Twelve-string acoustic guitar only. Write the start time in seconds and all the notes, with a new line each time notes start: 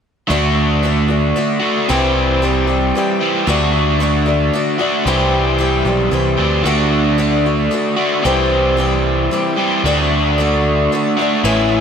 0.30 D3 A3 D4 F#4
0.83 D3 A3 D4 F#4
1.08 A3 D4 F#4
1.36 D3 A3 D4 F#4
1.89 C3 E3 G3 C4 G4
2.42 E3 G3 C4 G4
2.67 G3 C4 G4
2.95 E3 G3 C4 G4
3.47 D3 A3 D4 F#4
4.00 D3 A3 D4 F#4
4.26 A3 D4 F#4
4.53 D3 A3 D4 F#4
4.79 A3 D4 F#4
5.07 C3 E3 G3 C4 G4
5.58 E3 G3 C4 G4
5.85 G3 C4 G4
6.11 E3 G3 C4 G4
6.66 D3 A3 D4 F#4
7.18 D3 A3 D4 F#4
7.46 A3 D4 F#4
7.71 D3 A3 D4 F#4
8.25 C3 E3 G3 C4 G4
8.77 E3 G3 C4 G4
9.31 E3 G3 C4 G4
9.86 D3 A3 D4 F#4
10.38 D3 A3 D4 F#4
10.92 D3 A3 D4 F#4
11.19 A3 D4 F#4
11.45 A2 E3 B3 C#4 E4